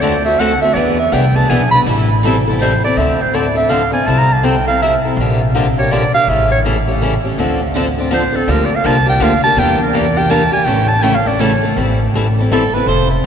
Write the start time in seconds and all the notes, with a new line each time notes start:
Already playing: D2
0.01 D3 A3 C4 F#4 A4 D5
0.25 C4 F#4 A4 E5
0.39 D3 A3 C4 F#4 A4 F#5
0.62 C4 F#4 A4 E5
0.74 E2 E3 B3 D4 G#4 B4 D5
0.99 E5
1.12 C2 E3 B3 D4 G#4 B4 G5
1.36 B3 D4 G#4 A5
1.49 B1 E3 B3 D4 G#4 B4 G#5
1.71 D4 G#4 B5
1.75 B3
1.86 A1 E3 G3 C4 E4 A4
2.25 E3 G3 C4 E4 A4
2.48 C4 E4 A4
2.61 E3 G3 C4 E4 A4 C5
2.84 C4 E4 A4 D5
2.97 D2 D3 F3 C4 D4 A4 E5
3.22 C5
3.33 D3 F3 C4 D4 A4 D5
3.55 C4 D4 A4 E5
3.69 D3 F3 C4 D4 A4 F5
3.92 C4 D4 A4 G#5
4.07 C2 C3 F3 C4 E4 A4 A5
4.18 A#5
4.32 A5
4.43 C3 F3 C4 E4 A4 G5
4.67 C4 E4 A4 F5
4.82 C3 F3 C4 E4 A4 E5
5.05 C4 E4 A4
5.17 A#1 D3 F3 A#3
5.21 D4 G4
5.55 D3 F3 A#3 D4 G4
5.79 A#3 D4 G4 C#5
5.91 D3 F3 A#3 D4 G4 D5
6.14 A#3 D4 G4 F5
6.27 A1 C#3 E3 A3 C#4 G4 E5
6.51 C#5
6.65 C#3 E3 A3 C#4 G4
6.88 A3 C#4 G4
7.02 C#3 E3 A3 C#4 G4
7.24 A3 C#4 G4
7.38 D2 D3 F3 C4 D4 A4
7.75 D3 F3 C4 D4 A4
7.98 C4 D4 A4
8.11 D3 F3 C4 D4 A4 C5
8.32 C4 D4 A4
8.48 D2 D3 F3 A#3 D4 G4 A#4
8.65 D5
8.76 F5
8.84 C2 D3 F3 A#3 D4 G4 A5
9.06 A#3 D4 G4 G5
9.20 D2 D3 F3 A#3 D4 G4 F5
9.44 A#3 D4 G4 A5
9.57 E2 E3 G3 A#3 D4 E4 G4 A#4 G5
9.82 A#4
9.93 E3 G3 A#3 D4 E4 G4 A#4 D5
10.17 A#3 D4 G4 G5
10.30 E3 G3 A#3 D4 E4 G4 A#4 A5
10.52 A#3 D4 G4 G#5
10.64 A1 C#3 E3 A3 C#4 E4 A4 G5
10.88 A5
11.02 C#3 E3 A3 C#4 E4 A4 G5
11.15 F5
11.27 A3 C#4 A4 D5
11.39 C#3 E3 A3 C#4 E4 A4 C#5
11.63 A3 C#4 A4
11.76 A1 E3 G3 C4 E4 A4
12.14 A1 E3 G3 C4 E4 A4
12.39 C4 E4 A4
12.51 G1 E3 G3 C4 E4 A4
12.73 C4 E4 A4 B4
12.86 F1 F3 C4 E4 A4 C5
13.11 E4